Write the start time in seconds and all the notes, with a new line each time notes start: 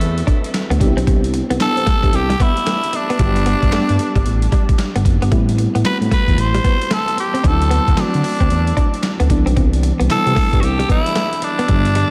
Already playing: A3 C4 E4 F#4 A4 B4
0.00 E2, closed hi-hat
0.18 closed hi-hat
0.27 D4, kick, closed hi-hat
0.44 closed hi-hat
0.54 snare, clap, closed hi-hat
0.70 D2 B3, closed hi-hat
0.80 C2 B3 D4 D#4 G4, muted clean electric guitar stroke, kick, closed hi-hat
0.87 E4
0.97 B1 C4, closed hi-hat
1.07 C2 C4, kick, closed hi-hat
1.24 closed hi-hat
1.34 muted clean electric guitar stroke, closed hi-hat
1.50 C2 B3, closed hi-hat
1.60 C3 B3 D4 E4 G4 A4, snare, clap, closed hi-hat
1.76 C3, closed hi-hat
1.86 A3, kick, snare, closed hi-hat
2.03 G2, kick, closed hi-hat
2.13 C2 G4, muted clean electric guitar stroke, closed hi-hat
2.30 G3, closed hi-hat
2.40 B3 E4, kick, closed hi-hat
2.57 closed hi-hat
2.67 A3, snare, clap, closed hi-hat
2.84 closed hi-hat
2.93 D4, muted clean electric guitar stroke, closed hi-hat
3.10 B3, closed hi-hat
3.18 G1 G3 B3 D4 F#4, kick, closed hi-hat
3.26 G4
3.36 muted clean electric guitar stroke, closed hi-hat
3.46 B3, closed hi-hat
3.62 G1, kick, closed hi-hat
3.72 G2 G3 A3 B3 D4 G4, snare, clap, closed hi-hat
3.89 G2, closed hi-hat
3.99 muted clean electric guitar stroke, closed hi-hat
4.16 G1 G3, kick, closed hi-hat
4.26 A1, closed hi-hat
4.42 closed hi-hat
4.52 G3, kick, closed hi-hat
4.69 kick, closed hi-hat
4.79 snare, clap, closed hi-hat
4.95 G1 B3, closed hi-hat
5.05 F#1, muted clean electric guitar stroke, kick, closed hi-hat
5.22 G1 B3, closed hi-hat
5.31 A1 G3 A3 B3 C4 E4, kick, closed hi-hat
5.49 closed hi-hat
5.58 muted clean electric guitar stroke, closed hi-hat
5.75 A1 B3, closed hi-hat
5.84 A2 G3 A3 C4 F#4 B4, snare, clap, closed hi-hat
6.01 A2, closed hi-hat
6.11 A3 B4, kick, snare, closed hi-hat
6.28 E2, kick, closed hi-hat
6.37 A1 C5, muted clean electric guitar stroke, closed hi-hat
6.55 G3, closed hi-hat
6.64 B3, kick, closed hi-hat
6.82 closed hi-hat
6.91 A3 A4, snare, clap, closed hi-hat
7.08 closed hi-hat
7.17 G4, muted clean electric guitar stroke, closed hi-hat
7.34 C4, closed hi-hat
7.44 D2 F#3 A3 C4 D4 D#4 A4, kick, closed hi-hat
7.51 E4
7.61 muted clean electric guitar stroke, closed hi-hat
7.70 B3, closed hi-hat
7.87 D2, kick, closed hi-hat
7.97 D3 F#3 A3 C4 D4 F#4, snare, clap, closed hi-hat
8.14 D3, closed hi-hat
8.24 muted clean electric guitar stroke, open hi-hat
8.40 D2 C4, kick, closed hi-hat
8.50 E2, closed hi-hat
8.67 closed hi-hat
8.77 D4, kick, closed hi-hat
8.94 closed hi-hat
9.03 snare, clap, closed hi-hat
9.20 D2 B3, closed hi-hat
9.30 C2 E3 G3 B3 D4, muted clean electric guitar stroke, kick, closed hi-hat
9.46 B1 C4, closed hi-hat
9.56 C2 C4, kick, closed hi-hat
9.73 closed hi-hat
9.83 muted clean electric guitar stroke, closed hi-hat
10.00 C2 B3, closed hi-hat
10.09 C3 E3 G3 B3 E4 A4, snare, clap, closed hi-hat
10.26 C3, closed hi-hat
10.36 A3, kick, snare, open hi-hat
10.53 G2, kick, closed hi-hat
10.60 C2 F#4 G4, muted clean electric guitar stroke, closed hi-hat
10.79 G3, closed hi-hat
10.89 B3 E4, kick, closed hi-hat
11.06 closed hi-hat
11.16 A3, snare, clap, closed hi-hat
11.33 closed hi-hat
11.42 D4, muted clean electric guitar stroke, closed hi-hat
11.59 B3, closed hi-hat
11.68 G1 D3 G3 B3 D4, kick, closed hi-hat
11.85 muted clean electric guitar stroke, closed hi-hat
11.95 G3, closed hi-hat